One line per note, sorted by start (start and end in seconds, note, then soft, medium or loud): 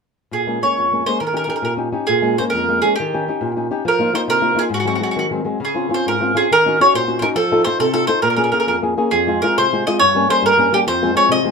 0.31 0.61 A#2 soft
0.31 0.61 G#4 medium
0.47 0.61 G#3 soft
0.47 0.61 A#3 soft
0.47 0.62 C#4 soft
0.63 0.86 G#3 soft
0.63 0.86 A#3 soft
0.63 0.87 C#4 soft
0.63 1.04 C#5 medium
0.78 1.06 F2 soft
0.92 1.05 G#3 soft
0.92 1.05 A#3 soft
0.92 1.06 C#4 soft
1.06 1.18 G#3 soft
1.06 1.18 A#3 soft
1.06 1.18 C#4 soft
1.06 1.20 C5 medium
1.20 1.49 D#3 medium
1.20 1.26 A#4 medium
1.27 1.35 A#4 soft
1.33 1.46 C#4 soft
1.33 1.47 D#4 soft
1.33 1.47 G4 soft
1.33 1.43 A#4 medium
1.44 1.72 C#4 soft
1.44 1.48 A#4 soft
1.48 1.73 D#4 soft
1.48 1.72 G4 soft
1.48 1.55 A#4 medium
1.56 1.63 A#4 soft
1.62 1.92 A#2 medium
1.62 1.72 A#4 soft
1.77 1.91 C#4 soft
1.77 1.91 D#4 soft
1.77 1.92 G4 soft
1.92 2.05 C#4 soft
1.92 2.05 D#4 soft
1.92 2.06 G4 soft
2.07 2.38 A#2 medium
2.07 2.36 G#4 medium
2.22 2.38 G#3 soft
2.22 2.38 A#3 soft
2.22 2.38 C#4 soft
2.38 2.63 G#3 soft
2.38 2.63 A#3 soft
2.38 2.63 C#4 soft
2.38 2.43 C5 medium
2.50 2.82 F2 soft
2.50 2.79 A#4 medium
2.68 2.83 G#3 soft
2.68 2.83 A#3 soft
2.68 2.84 C#4 soft
2.82 2.95 G#3 soft
2.82 2.95 A#3 soft
2.82 2.96 C#4 soft
2.82 2.95 G#4 medium
2.96 3.51 G4 medium
3.00 3.27 D#3 medium
3.14 3.27 C#4 soft
3.14 3.27 D#4 soft
3.14 3.28 G4 soft
3.28 3.51 C#4 soft
3.28 3.51 D#4 soft
3.28 3.52 G4 soft
3.41 3.69 A#2 medium
3.56 3.70 C#4 soft
3.56 3.70 D#4 soft
3.56 3.70 G4 soft
3.71 3.82 C#4 soft
3.71 3.82 D#4 soft
3.71 3.83 G4 medium
3.85 4.13 F3 medium
3.85 4.14 A#4 medium
3.99 4.13 A#3 soft
3.99 4.13 D#4 soft
3.99 4.13 F4 soft
4.14 4.37 A#3 soft
4.14 4.38 D#4 soft
4.14 4.38 F4 soft
4.14 4.20 C5 medium
4.28 4.56 C3 medium
4.28 4.59 A#4 medium
4.42 4.54 A#3 soft
4.42 4.54 D#4 soft
4.42 4.55 F4 soft
4.55 4.68 A#3 soft
4.55 4.68 D#4 soft
4.55 4.68 F4 medium
4.55 4.64 G#4 medium
4.70 5.00 G#2 medium
4.74 4.79 F#4 medium
4.80 4.86 F#4 soft
4.85 4.99 F#3 soft
4.85 5.00 G#3 soft
4.85 5.00 C4 soft
4.85 4.94 F#4 medium
4.95 5.02 F#4 soft
5.00 5.25 F#3 soft
5.00 5.25 G#3 soft
5.00 5.26 C4 soft
5.00 5.10 F#4 medium
5.11 5.18 F#4 soft
5.16 5.46 D#3 medium
5.16 5.26 F#4 soft
5.31 5.43 F#3 soft
5.31 5.44 G#3 soft
5.31 5.45 C4 soft
5.44 5.57 F#3 soft
5.44 5.58 G#3 soft
5.44 5.58 C4 soft
5.60 5.90 C#3 medium
5.65 5.94 G#4 medium
5.74 5.88 C4 soft
5.74 5.88 C#4 soft
5.74 5.90 F4 soft
5.89 6.14 C4 soft
5.89 6.14 C#4 soft
5.89 6.15 F4 soft
5.94 6.07 C5 medium
6.06 6.35 G#2 medium
6.06 6.35 A#4 medium
6.21 6.34 C4 soft
6.21 6.33 C#4 soft
6.21 6.34 F4 soft
6.35 6.47 C4 soft
6.35 6.47 C#4 soft
6.35 6.47 F4 medium
6.35 6.50 G#4 medium
6.51 6.79 D#3 medium
6.51 6.79 A#4 medium
6.66 6.79 C#4 soft
6.66 6.80 D#4 soft
6.66 6.80 F#4 soft
6.80 7.03 C#4 soft
6.80 7.04 D#4 soft
6.80 7.04 F#4 soft
6.80 6.94 C#5 medium
6.94 7.22 A#2 medium
6.94 7.18 C5 medium
7.08 7.20 C#4 soft
7.08 7.22 D#4 soft
7.08 7.22 F#4 soft
7.19 7.33 C#4 soft
7.19 7.34 D#4 soft
7.19 7.34 F#4 medium
7.19 7.27 A#4 medium
7.19 7.23 C5 soft
7.36 7.64 F3 medium
7.36 7.63 A4 medium
7.51 7.65 D#4 soft
7.51 7.66 F4 soft
7.51 7.66 A4 medium
7.64 7.89 D#4 soft
7.64 7.89 F4 soft
7.64 7.80 C5 medium
7.80 8.08 C3 medium
7.80 7.92 A4 medium
7.94 8.07 D#4 soft
7.94 8.07 F4 soft
7.94 8.07 A4 medium
7.94 8.08 A4 soft
8.07 8.19 D#4 soft
8.07 8.20 F4 soft
8.07 8.20 A4 soft
8.07 8.21 C5 medium
8.22 8.51 A#2 medium
8.22 8.29 A#4 medium
8.30 8.35 A#4 medium
8.36 8.51 A#3 soft
8.36 8.52 C#4 soft
8.36 8.52 G#4 soft
8.36 8.43 A#4 medium
8.44 8.51 A#4 soft
8.52 8.76 A#3 soft
8.52 8.77 C#4 soft
8.52 8.77 G#4 soft
8.52 8.59 A#4 soft
8.60 8.67 A#4 medium
8.67 8.96 F2 medium
8.67 8.75 A#4 medium
8.82 8.96 A#3 soft
8.82 8.96 C#4 soft
8.82 8.97 G#4 soft
8.97 9.09 A#3 soft
8.97 9.09 C#4 soft
8.97 9.09 G#4 soft
9.11 9.41 F2 medium
9.11 9.42 G#4 medium
9.27 9.42 G#3 soft
9.27 9.42 C4 soft
9.27 9.43 F4 medium
9.42 9.66 G#3 soft
9.42 9.66 C4 soft
9.42 9.66 F4 soft
9.42 9.56 A#4 medium
9.58 9.85 C3 medium
9.58 9.86 C5 medium
9.73 9.86 G#3 soft
9.73 9.87 C4 soft
9.73 9.86 F4 soft
9.87 9.98 G#3 soft
9.87 9.98 C4 soft
9.87 9.98 F4 medium
9.87 9.99 D#5 medium
9.99 10.28 G2 medium
9.99 10.29 C#5 medium
10.15 10.28 G3 soft
10.15 10.28 A#3 soft
10.15 10.29 C#4 medium
10.29 10.52 G3 soft
10.29 10.52 A#3 soft
10.29 10.53 C#4 soft
10.29 10.43 C5 medium
10.42 10.71 G2 medium
10.42 10.71 A#4 medium
10.57 10.71 G3 soft
10.57 10.72 A#3 soft
10.57 10.72 C#4 medium
10.72 10.84 G3 medium
10.72 10.84 A#3 soft
10.72 10.84 C#4 medium
10.72 10.79 G4 medium
10.87 11.14 F2 medium
10.87 11.16 C5 medium
11.02 11.13 F3 medium
11.02 11.14 G#3 soft
11.02 11.14 C4 medium
11.15 11.38 F3 soft
11.15 11.38 G#3 soft
11.15 11.38 C4 soft
11.15 11.30 C#5 medium
11.29 11.51 C3 medium
11.29 11.51 D#5 medium
11.44 11.51 F3 soft
11.44 11.51 G#3 soft
11.44 11.51 C4 soft